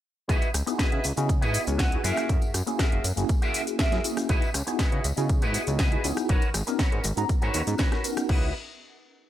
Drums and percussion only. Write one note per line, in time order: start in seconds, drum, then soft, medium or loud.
0.29 kick loud
0.29 closed hi-hat medium
0.29 tambourine medium
0.29 shaker soft
0.42 closed hi-hat soft
0.42 tambourine soft
0.54 cross-stick medium
0.54 open hi-hat loud
0.54 tambourine medium
0.54 shaker medium
0.67 closed hi-hat soft
0.67 tambourine soft
0.67 shaker soft
0.79 kick loud
0.79 snare loud
0.79 closed hi-hat medium
0.79 tambourine medium
0.79 shaker soft
0.92 closed hi-hat soft
1.04 open hi-hat medium
1.04 tambourine medium
1.04 shaker medium
1.17 closed hi-hat soft
1.17 tambourine soft
1.17 shaker soft
1.29 kick loud
1.29 closed hi-hat medium
1.29 tambourine soft
1.29 shaker soft
1.42 closed hi-hat soft
1.42 tambourine soft
1.54 open hi-hat loud
1.54 tambourine loud
1.54 shaker medium
1.67 closed hi-hat soft
1.67 tambourine soft
1.67 shaker soft
1.79 kick loud
1.79 snare loud
1.79 closed hi-hat medium
1.79 tambourine medium
1.79 shaker soft
1.92 closed hi-hat soft
2.04 open hi-hat loud
2.04 tambourine medium
2.04 shaker medium
2.16 cross-stick medium
2.16 closed hi-hat soft
2.16 tambourine soft
2.16 shaker soft
2.29 kick loud
2.29 closed hi-hat medium
2.29 tambourine soft
2.29 shaker soft
2.42 closed hi-hat soft
2.42 tambourine soft
2.54 cross-stick medium
2.54 open hi-hat loud
2.54 tambourine medium
2.54 shaker medium
2.67 closed hi-hat soft
2.67 tambourine soft
2.67 shaker soft
2.79 kick loud
2.79 snare loud
2.79 closed hi-hat medium
2.79 tambourine medium
2.79 shaker soft
2.92 closed hi-hat soft
3.04 open hi-hat loud
3.04 tambourine loud
3.04 shaker medium
3.17 closed hi-hat soft
3.17 tambourine soft
3.17 shaker soft
3.29 kick loud
3.29 closed hi-hat medium
3.29 tambourine medium
3.29 shaker soft
3.42 closed hi-hat soft
3.42 tambourine soft
3.54 open hi-hat loud
3.54 tambourine loud
3.54 shaker medium
3.67 closed hi-hat soft
3.67 tambourine soft
3.67 shaker soft
3.79 kick loud
3.79 snare loud
3.79 closed hi-hat medium
3.79 tambourine medium
3.79 shaker soft
3.92 snare soft
3.92 closed hi-hat soft
4.04 open hi-hat loud
4.04 tambourine loud
4.04 shaker medium
4.17 cross-stick medium
4.17 closed hi-hat soft
4.17 tambourine soft
4.17 shaker soft
4.29 kick loud
4.29 closed hi-hat medium
4.29 tambourine medium
4.29 shaker soft
4.42 closed hi-hat soft
4.42 tambourine soft
4.54 cross-stick medium
4.54 open hi-hat loud
4.54 tambourine loud
4.54 shaker medium
4.67 closed hi-hat soft
4.67 tambourine soft
4.67 shaker soft
4.79 kick loud
4.79 snare loud
4.79 closed hi-hat medium
4.79 tambourine medium
4.79 shaker soft
4.92 closed hi-hat soft
5.04 open hi-hat loud
5.04 tambourine loud
5.04 shaker medium
5.17 closed hi-hat soft
5.17 tambourine soft
5.17 shaker soft
5.29 kick loud
5.29 closed hi-hat medium
5.29 tambourine medium
5.29 shaker soft
5.42 closed hi-hat soft
5.42 tambourine soft
5.54 open hi-hat loud
5.54 tambourine loud
5.54 shaker medium
5.67 closed hi-hat soft
5.67 tambourine soft
5.67 shaker soft
5.79 kick loud
5.79 snare loud
5.79 closed hi-hat medium
5.79 tambourine medium
5.79 shaker soft
5.92 closed hi-hat soft
6.04 open hi-hat loud
6.04 tambourine medium
6.04 shaker medium
6.17 cross-stick medium
6.17 closed hi-hat soft
6.17 tambourine soft
6.17 shaker soft
6.29 kick loud
6.29 closed hi-hat medium
6.29 tambourine medium
6.29 shaker soft
6.42 closed hi-hat soft
6.42 tambourine soft
6.54 cross-stick medium
6.54 open hi-hat loud
6.54 tambourine loud
6.54 shaker medium
6.67 closed hi-hat soft
6.67 tambourine soft
6.67 shaker soft
6.79 kick loud
6.79 snare loud
6.79 closed hi-hat medium
6.79 tambourine medium
6.79 shaker soft
6.92 closed hi-hat soft
7.04 open hi-hat loud
7.04 tambourine loud
7.04 shaker medium
7.17 closed hi-hat soft
7.17 tambourine soft
7.17 shaker soft
7.29 kick loud
7.29 closed hi-hat medium
7.29 tambourine medium
7.29 shaker soft
7.42 closed hi-hat soft
7.42 tambourine soft
7.54 open hi-hat loud
7.54 tambourine loud
7.54 shaker medium
7.67 closed hi-hat soft
7.67 tambourine soft
7.67 shaker soft
7.78 kick loud
7.78 snare loud
7.78 closed hi-hat medium
7.78 tambourine medium
7.78 shaker soft
7.92 cross-stick medium
7.92 snare soft
7.92 closed hi-hat soft
8.04 open hi-hat loud
8.04 tambourine medium
8.04 shaker medium
8.17 cross-stick medium
8.17 closed hi-hat soft
8.17 tambourine soft
8.17 shaker soft
8.29 kick loud
8.29 crash medium